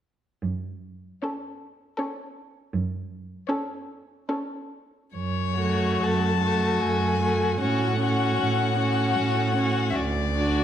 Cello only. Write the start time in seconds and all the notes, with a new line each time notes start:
0.42 F#2
2.73 F#2
5.15 F#2
6.02 F#2
6.82 F#2
7.61 A2
8.42 A2
9.19 A2
9.97 D2